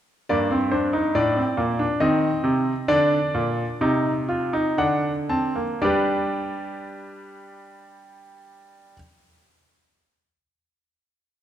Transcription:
grand piano
0.29 G2 A#3 D5
0.51 C4
0.71 D4 C5
0.93 D#4
1.15 A2 D4 D5
1.36 C4
1.57 A#2 A#3
1.79 D4
2.00 D#3 C4 D#5
2.44 C3
2.88 D3 D4 D5
3.34 A#2
3.81 C3 D#4
4.29 F4
4.53 D#4
4.78 D3 D4 F#5
5.29 C4 A5
5.56 A#3
5.82 G3 D4 G4 B4 D5

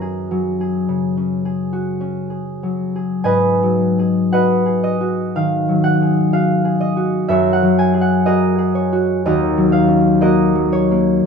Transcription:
harp
Already playing: F#2 C#4 F#4 A#4 B4 F#5 G#5
0.01 G#4
0.31 F#3
0.61 G#4
0.89 C#3
1.17 C#4
1.45 G#4
1.73 F#4
2.01 C#4
2.30 G#4
2.63 F#3
2.96 G#4
3.24 G#2 B4 D#5 G#5
3.63 F#3
3.99 G#4
4.32 F#4 B4 D#5 F#5
4.66 G#4
4.84 D#5
5.01 F#4
5.36 D#3 F5
5.69 F#3
5.84 F#5
6.02 G#4
6.33 F#4 F5
6.65 G#4
6.80 D#5
6.97 F#4
7.28 F#2 A#4 C#5 E5
7.53 F#5
7.62 F#3
7.79 G#5
7.94 G#4
8.01 F#5
8.26 F#4 G#4 A#4 D#5
8.58 G#4
8.75 C#5
8.93 F#4
9.26 D#2 F#4 A#4 D#5
9.57 F#3
9.72 F5
9.88 C#4
10.21 A#3 F#4 A#4 D#5
10.55 F#3
10.72 C#5
10.91 A#3

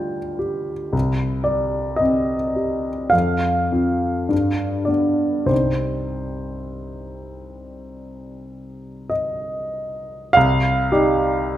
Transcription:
grand piano
Already playing: D3 G3 F4 G4 G5
0.39 G4
0.93 C2
1.44 G3 D5
1.96 D#5
2.01 C4
2.56 G4
3.10 F2 F5
3.72 C4 F4
4.29 G2
4.85 B3 D4 D5
5.46 C2 G3 C4 D#4 C5
9.10 D#5
10.33 C2 F5
10.92 G3 D#4 G4

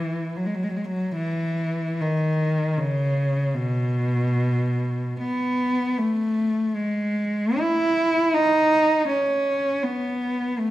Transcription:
cello
Already playing: E3
0.36 F#3
0.45 G#3
0.55 F#3
0.63 G#3
0.69 F#3
0.76 G#3
0.85 F#3
1.16 E3
2.01 D#3
2.78 C#3
3.54 B2
5.20 B3
5.98 A3
6.75 G#3
7.59 E4
8.34 D#4
9.09 C#4
9.83 B3
10.59 A3

